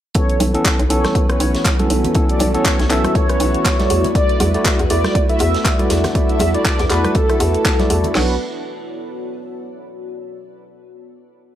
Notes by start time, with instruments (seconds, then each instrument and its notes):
0.15 tine electric piano E3 B3 C#4 A4, string machine A3 C#4 E4 F#4 B4, ambient pad B3, soft synth lead C#5, kick, closed hi-hat
0.30 closed hi-hat
0.40 fm bass B1, closed hi-hat, open hi-hat, high conga
0.54 tine electric piano E3 B3 C#4 A4, ambient pad F#4, closed hi-hat
0.65 kick, snare, clap, closed hi-hat
0.79 fm bass B1, closed hi-hat
0.90 fm bass B1, tine electric piano E3 B3 C#4 A4, soft synth lead C#5, closed hi-hat, open hi-hat
1.04 ambient pad C#6, cross-stick, snare, closed hi-hat, high conga
1.15 kick, closed hi-hat
1.29 tine electric piano E3 B3 C#4 B4, soft synth lead C#5, cross-stick, closed hi-hat
1.40 fm bass B1, closed hi-hat, open hi-hat
1.55 snare, closed hi-hat
1.64 kick, snare, clap, closed hi-hat
1.79 tine electric piano E3 B3 C#4 A4, closed hi-hat, high conga
1.85 ambient pad E5
1.90 fm bass B1, closed hi-hat, open hi-hat
2.04 closed hi-hat, low conga
2.15 tine electric piano E3 B3 C#4 A4, string machine A4, kick, closed hi-hat
2.29 soft synth lead D5, closed hi-hat
2.40 fm bass B1, closed hi-hat, open hi-hat, high conga
2.54 tine electric piano E3 B3 C#4 A4, soft synth lead C#5, closed hi-hat
2.65 kick, snare, clap, closed hi-hat
2.79 fm bass B1, snare, closed hi-hat
2.90 fm bass B1, tine electric piano E3 B3 C#4 A4, soft synth lead E5, clap, closed hi-hat, open hi-hat
3.04 cross-stick, closed hi-hat, high conga
3.15 soft synth lead C#5, kick, closed hi-hat
3.29 tine electric piano E3 B3 C#4 B4, cross-stick, closed hi-hat
3.40 fm bass B1, closed hi-hat, open hi-hat
3.54 closed hi-hat
3.65 kick, snare, clap, closed hi-hat
3.79 tine electric piano A3 E4 F#4 D5, snare, closed hi-hat, high conga
3.90 fm bass E2, string machine A3 D4 B4, ambient pad E4, closed hi-hat, open hi-hat
4.04 closed hi-hat, low conga
4.12 tine electric piano A3 E4 F#4 D5, soft synth lead D5, ambient pad F#5, kick, closed hi-hat
4.29 closed hi-hat
4.40 fm bass E2, closed hi-hat, open hi-hat, high conga
4.54 tine electric piano A3 E4 F#4 D5, closed hi-hat
4.61 ambient pad B4
4.65 kick, snare, clap, closed hi-hat
4.79 fm bass E2, closed hi-hat
4.90 fm bass E2, tine electric piano A3 E4 F#4 D5, soft synth lead D5, closed hi-hat, open hi-hat
5.02 ambient pad A5, cross-stick, snare, closed hi-hat, high conga
5.15 kick, closed hi-hat
5.29 tine electric piano A3 E4 F#4 E5, soft synth lead E5, closed hi-hat
5.39 fm bass E2, closed hi-hat, open hi-hat
5.54 snare, closed hi-hat
5.65 kick, snare, clap, closed hi-hat
5.79 tine electric piano A3 E4 F#4 D5, closed hi-hat, high conga
5.90 fm bass E2, string machine A4, snare, closed hi-hat, open hi-hat
6.04 cross-stick, snare, closed hi-hat, low conga
6.15 tine electric piano A3 E4 F#4 D5, kick, closed hi-hat
6.29 soft synth lead E5, closed hi-hat
6.40 fm bass E2, closed hi-hat, open hi-hat, high conga
6.54 tine electric piano A3 E4 F#4 D5, soft synth lead D5, closed hi-hat
6.65 kick, snare, clap, closed hi-hat
6.79 fm bass E2, snare, closed hi-hat
6.90 fm bass E2, tine electric piano A3 E4 F#4 D5, soft synth lead B4, clap, closed hi-hat, open hi-hat
7.04 cross-stick, closed hi-hat, high conga
7.15 soft synth lead A4, kick, closed hi-hat
7.29 tine electric piano A3 E4 F#4 E5, cross-stick, closed hi-hat
7.40 fm bass E2, closed hi-hat, open hi-hat
7.54 closed hi-hat
7.65 kick, snare, clap, closed hi-hat
7.79 tine electric piano A3 E4 F#4 D5, snare, closed hi-hat, high conga
7.90 fm bass E2, closed hi-hat, open hi-hat
8.04 closed hi-hat, low conga
8.14 fm bass B1, tine electric piano F#3 B3 D4 F#4, string machine B3 D4 F#4 D5 F#5, ambient pad B3, soft synth lead B4, snare, crash
8.24 ambient pad F#4
8.32 ambient pad C#5
8.38 ambient pad D5